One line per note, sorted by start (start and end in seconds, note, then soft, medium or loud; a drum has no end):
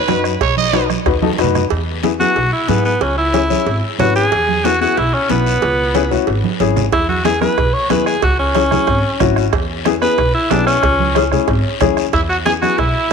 0.00 0.25 B4 loud
0.07 0.34 F#2 loud
0.07 0.31 D#4 medium
0.07 0.31 F#4 medium
0.07 0.31 B4 medium
0.07 bombo rim medium
0.07 cowbell medium
0.07 high conga medium
0.07 short guiro medium
0.24 bombo rim medium
0.24 short guiro medium
0.41 0.93 B1 medium
0.41 0.56 C#5 medium
0.41 bombo low medium
0.41 bombo rim medium
0.41 cowbell loud
0.41 long guiro medium
0.57 0.88 D#5 loud
0.57 high conga medium
0.73 0.84 D#4 medium
0.73 0.85 F#4 medium
0.73 0.85 B4 medium
0.73 bombo rim medium
0.73 cowbell medium
0.73 high conga loud
0.73 short guiro medium
0.90 bombo rim medium
0.90 high conga medium
0.90 short guiro medium
1.05 1.32 D#2 medium
1.05 1.11 D#4 medium
1.05 1.12 F#4 medium
1.05 1.12 B4 medium
1.05 bombo low medium
1.05 bombo rim medium
1.05 cowbell medium
1.05 high conga soft
1.05 long guiro medium
1.22 1.28 D#4 medium
1.22 1.28 F#4 medium
1.22 1.28 A4 medium
1.22 high conga loud
1.33 high conga medium
1.38 1.64 F#2 medium
1.38 1.61 D#4 medium
1.38 1.61 F#4 medium
1.38 1.62 B4 loud
1.38 bombo rim medium
1.38 cowbell medium
1.38 short guiro medium
1.44 low conga medium
1.55 bombo rim medium
1.55 low conga medium
1.55 short guiro medium
1.70 2.23 E2 medium
1.70 cowbell loud
1.70 high conga soft
1.70 long guiro medium
2.03 2.09 B3 medium
2.03 2.09 E4 medium
2.03 2.10 G#4 medium
2.03 cowbell medium
2.03 high conga medium
2.03 short guiro medium
2.20 2.37 B3 medium
2.20 2.37 E4 medium
2.20 2.51 F#4 loud
2.20 2.37 G#4 medium
2.20 high conga medium
2.20 short guiro medium
2.36 2.49 B1 medium
2.36 cowbell medium
2.36 high conga soft
2.36 long guiro medium
2.52 2.70 E4 medium
2.68 2.95 G#2 medium
2.68 2.91 B3 medium
2.68 2.84 B3 medium
2.68 2.92 E4 medium
2.68 2.92 G#4 medium
2.68 cowbell medium
2.68 high conga medium
2.68 short guiro medium
2.85 3.02 B3 medium
2.85 short guiro medium
3.01 3.53 C#2 medium
3.01 3.17 C#4 medium
3.01 cowbell loud
3.01 high conga soft
3.01 long guiro medium
3.18 3.81 E4 loud
3.33 3.39 C#4 medium
3.33 3.40 E4 medium
3.33 3.40 G#4 medium
3.33 cowbell medium
3.33 high conga medium
3.33 short guiro medium
3.50 3.67 C#4 medium
3.50 3.67 E4 medium
3.50 3.68 G#4 medium
3.50 high conga medium
3.50 short guiro medium
3.66 3.80 G#1 medium
3.66 cowbell medium
3.66 high conga soft
3.66 long guiro medium
3.99 4.25 G#1 medium
3.99 4.22 C#4 medium
3.99 4.22 E4 medium
3.99 4.15 F#4 medium
3.99 4.22 B4 medium
3.99 cowbell medium
3.99 high conga medium
3.99 low conga medium
3.99 low timbale medium
3.99 short guiro medium
4.16 4.66 G#4 loud
4.16 short guiro medium
4.32 4.84 E2 loud
4.32 cowbell loud
4.32 high conga soft
4.32 long guiro medium
4.49 high conga medium
4.64 4.70 B3 medium
4.64 4.70 E4 medium
4.64 4.80 F#4 medium
4.64 4.70 G#4 medium
4.64 cowbell medium
4.64 high conga medium
4.64 short guiro medium
4.81 4.98 B3 medium
4.81 4.98 E4 medium
4.81 4.99 F#4 medium
4.81 4.98 G#4 medium
4.81 short guiro medium
4.97 5.11 B1 medium
4.97 5.15 E4 medium
4.97 cowbell medium
4.97 high conga soft
4.97 long guiro medium
5.14 5.29 C#4 medium
5.29 5.56 B1 medium
5.29 5.52 B3 medium
5.29 6.25 B3 medium
5.29 5.53 E4 medium
5.29 5.53 B4 medium
5.29 cowbell medium
5.29 high conga medium
5.29 short guiro medium
5.46 short guiro medium
5.62 6.15 C#2 medium
5.62 cowbell loud
5.62 high conga soft
5.62 long guiro medium
5.94 6.00 C#4 medium
5.94 6.01 E4 medium
5.94 6.01 G#4 loud
5.94 cowbell medium
5.94 high conga medium
5.94 short guiro medium
6.11 6.28 C#4 medium
6.11 6.28 E4 medium
6.11 6.28 F#4 medium
6.11 low conga medium
6.11 short guiro medium
6.27 6.41 G#1 medium
6.27 cowbell medium
6.27 high conga soft
6.27 long guiro medium
6.44 high conga medium
6.60 6.86 G#1 medium
6.60 6.83 C#4 medium
6.60 6.83 E4 medium
6.60 6.83 G#4 medium
6.60 cowbell medium
6.60 high conga medium
6.60 short guiro medium
6.76 low conga medium
6.76 short guiro medium
6.92 7.45 E2 medium
6.92 7.08 E4 loud
6.92 bombo low medium
6.92 bombo rim medium
6.92 cowbell loud
6.92 high conga soft
6.92 long guiro medium
7.09 7.24 F#4 medium
7.09 high conga medium
7.25 7.31 B3 medium
7.25 7.31 E4 medium
7.25 7.40 G#4 medium
7.25 7.31 G#4 medium
7.25 bombo rim medium
7.25 cowbell medium
7.25 high conga medium
7.25 short guiro medium
7.41 7.58 B3 medium
7.41 7.59 E4 medium
7.41 7.59 G#4 medium
7.41 7.75 B4 medium
7.41 bombo rim medium
7.41 high conga medium
7.41 short guiro medium
7.57 7.71 B1 medium
7.57 bombo low medium
7.57 bombo rim medium
7.57 cowbell medium
7.57 long guiro medium
7.73 7.90 C#5 medium
7.90 8.16 D#2 medium
7.90 8.13 B3 medium
7.90 8.13 E4 medium
7.90 8.13 G#4 medium
7.90 8.06 B4 medium
7.90 bombo rim medium
7.90 cowbell medium
7.90 high conga medium
7.90 short guiro medium
8.06 8.22 G#4 medium
8.06 bombo rim medium
8.06 short guiro medium
8.22 8.75 C#2 loud
8.22 8.39 F#4 medium
8.22 bombo low medium
8.22 bombo rim medium
8.22 cowbell loud
8.22 high conga soft
8.22 long guiro medium
8.39 9.34 C#4 loud
8.55 8.61 C#4 medium
8.55 8.61 E4 medium
8.55 8.61 G#4 medium
8.55 bombo rim medium
8.55 cowbell medium
8.55 high conga medium
8.55 short guiro medium
8.71 8.88 C#4 medium
8.71 8.89 E4 medium
8.71 8.89 G#4 medium
8.71 bombo rim medium
8.71 high conga medium
8.71 low conga medium
8.71 short guiro medium
8.87 9.01 G#1 medium
8.87 bombo low medium
8.87 bombo rim medium
8.87 cowbell medium
8.87 long guiro medium
9.20 9.46 G#1 medium
9.20 9.43 C#4 medium
9.20 9.43 E4 medium
9.20 9.43 F#4 loud
9.20 bombo low medium
9.20 bombo rim medium
9.20 cowbell medium
9.20 high conga medium
9.20 low conga medium
9.20 short guiro medium
9.36 bombo rim medium
9.36 short guiro medium
9.53 10.05 E2 medium
9.53 bombo low medium
9.53 bombo rim medium
9.53 cowbell loud
9.53 high conga soft
9.53 long guiro medium
9.85 9.91 B3 medium
9.85 9.91 E4 medium
9.85 9.92 G#4 loud
9.85 bombo rim medium
9.85 cowbell medium
9.85 high conga medium
9.85 short guiro medium
10.02 10.19 B3 medium
10.02 10.19 E4 medium
10.02 10.19 G#4 medium
10.02 10.33 B4 medium
10.02 bombo rim medium
10.02 short guiro medium
10.18 10.31 B1 medium
10.18 bombo low medium
10.18 bombo rim medium
10.18 cowbell medium
10.18 high conga soft
10.18 long guiro medium
10.34 10.52 E4 medium
10.50 10.77 B1 medium
10.50 10.73 B3 medium
10.50 10.66 D4 medium
10.50 10.74 E4 medium
10.50 10.74 G#4 medium
10.50 bombo rim medium
10.50 cowbell medium
10.50 high conga medium
10.50 low timbale medium
10.50 short guiro medium
10.66 11.30 C#4 loud
10.66 bombo rim medium
10.66 short guiro medium
10.83 11.35 C#2 medium
10.83 bombo low medium
10.83 bombo rim medium
10.83 cowbell loud
10.83 long guiro medium
11.00 high conga medium
11.15 11.21 C#4 medium
11.15 11.22 E4 medium
11.15 11.22 G#4 loud
11.15 bombo rim medium
11.15 cowbell medium
11.15 high conga medium
11.15 short guiro medium
11.32 11.49 C#4 medium
11.32 11.49 E4 medium
11.32 11.49 G#4 medium
11.32 bombo rim medium
11.32 low conga medium
11.32 short guiro medium
11.48 11.61 G#1 loud
11.48 bombo low medium
11.48 bombo rim medium
11.48 cowbell medium
11.48 high conga soft
11.48 long guiro medium
11.81 12.07 D#2 medium
11.81 12.04 C#4 medium
11.81 12.04 E4 medium
11.81 12.04 G#4 loud
11.81 bombo low medium
11.81 bombo rim medium
11.81 cowbell medium
11.81 high conga medium
11.81 low conga medium
11.81 short guiro medium
11.97 bombo rim medium
11.97 short guiro medium
12.13 12.66 E2 medium
12.13 12.21 E4 medium
12.13 bombo low medium
12.13 bombo rim medium
12.13 cowbell loud
12.13 high conga soft
12.13 long guiro medium
12.29 12.37 F#4 medium
12.46 12.52 B3 medium
12.46 12.52 E4 medium
12.46 12.53 G#4 loud
12.46 12.54 G#4 medium
12.46 12.52 G#4 medium
12.46 bombo rim medium
12.46 cowbell medium
12.46 high conga medium
12.46 short guiro medium
12.62 12.79 B3 medium
12.62 12.79 E4 medium
12.62 12.80 F#4 loud
12.62 12.81 F#4 medium
12.62 12.80 G#4 medium
12.62 bombo rim medium
12.62 high conga medium
12.62 short guiro medium
12.78 12.92 B1 medium
12.78 13.13 E4 medium
12.78 bombo low medium
12.78 bombo rim medium
12.78 cowbell medium
12.78 long guiro medium